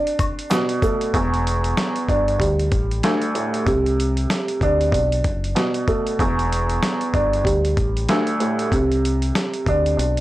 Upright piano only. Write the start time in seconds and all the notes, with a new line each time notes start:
Already playing: D4
0.50 B2
0.83 A3
1.14 E2
2.09 D4
2.39 G3
3.04 D2
3.35 A2
3.66 C3
4.63 D4
4.92 D4
5.55 B2
5.88 A3
6.19 E2
7.14 D4
7.44 G3
8.09 D2
8.40 A2
8.72 C3
9.68 D4
9.97 D4